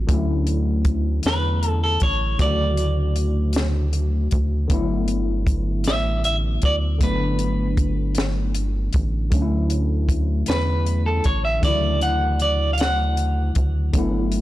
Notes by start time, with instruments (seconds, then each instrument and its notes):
0.07 analog synth bass D2, tine electric piano D3 F#3 A3, kick, closed hi-hat
0.12 tine electric piano C#4 E4
0.47 closed hi-hat
0.85 kick, closed hi-hat
1.23 analog synth bass E2, clean electric guitar B4, snare, closed hi-hat
1.63 closed hi-hat
1.68 clean electric guitar A4
1.84 clean electric guitar A4
2.00 analog synth bass A1, clean electric guitar C#5, kick, closed hi-hat
2.38 analog synth bass D2, tine electric piano D3 F#3 A3, clean electric guitar D5, kick, closed hi-hat
2.43 tine electric piano C#3 F#4
2.77 closed hi-hat
3.16 closed hi-hat
3.53 snare, closed hi-hat
3.93 closed hi-hat
4.31 analog synth bass D2, kick, closed hi-hat
4.68 analog synth bass G1, tine electric piano D3 F#3 A3, kick, closed hi-hat
4.72 tine electric piano B3 E4
5.08 closed hi-hat
5.47 kick, closed hi-hat
5.84 analog synth bass A1, clean electric guitar E5, snare, closed hi-hat
6.24 clean electric guitar E5, closed hi-hat
6.62 analog synth bass D2, clean electric guitar D5, kick, closed hi-hat
6.99 analog synth bass G1, tine electric piano D3 F#3 A3 B3, kick, closed hi-hat
7.03 tine electric piano D4, clean electric guitar B4
7.39 closed hi-hat
7.77 kick, closed hi-hat
8.15 snare, closed hi-hat
8.55 closed hi-hat
8.93 analog synth bass A1, kick, closed hi-hat
9.30 analog synth bass D2, tine electric piano D3 F#3 A3, kick, closed hi-hat
9.34 tine electric piano C#4 D4
9.42 tine electric piano E4
9.70 closed hi-hat
10.09 kick, closed hi-hat
10.46 analog synth bass E2, clean electric guitar B4, snare, closed hi-hat
10.86 closed hi-hat
11.06 clean electric guitar A4
11.24 analog synth bass A1, clean electric guitar C#5, kick, closed hi-hat
11.45 clean electric guitar E5
11.61 analog synth bass D2, tine electric piano D3 E3 A3, clean electric guitar D5, kick, closed hi-hat
11.65 tine electric piano C#3 F#3 E4
12.01 clean electric guitar F#5, closed hi-hat
12.40 clean electric guitar D5, closed hi-hat
12.73 clean electric guitar F5
12.78 clean electric guitar F#5, snare, closed hi-hat
13.17 closed hi-hat
13.55 analog synth bass D2, kick, closed hi-hat
13.93 analog synth bass G1, tine electric piano D3 F#3 A3, kick, closed hi-hat
13.98 tine electric piano B3 E4
14.32 closed hi-hat